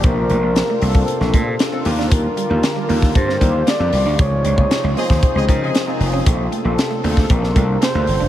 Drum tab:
HH |x-x-x-o-x-x-x-o-|x-x-x-o-x-x-x-o-|x-x-x-o-x-x-x-o-|x-x-x-o-x-x-x-o-|
SD |----o----o--o--o|----o--o-o--o---|----o--o----o---|----o--o-o--o---|
BD |o------o--o-----|o------oo-o-----|o--o---oo-o-----|o------oo-o-----|